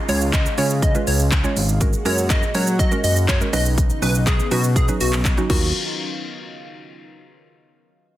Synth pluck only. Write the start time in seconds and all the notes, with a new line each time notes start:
0.09 G#3 C#4 F4 C#5
0.58 G#3 C#4 F4 C#5
0.95 G#3 C#4 F4 B4
1.44 G#3 C#4 F4 C#5
1.81 G#3 C#4 F#4 A#4
2.05 G#3 C#4 F#4 A#4
2.54 G#3 C#4 F#4 A#4
2.91 G#3 C#4 F#4 A#4
3.41 G#3 C#4 F#4 A#4
3.53 F#3 C#4 D#4 B4
4.02 F#3 C#4 D#4 B4
4.51 F#3 C#4 D#4 B4
4.88 F#3 C#4 D#4 B4
5.37 F#3 C#4 D#4 F#4
5.50 F#3 D#4 F4 A#4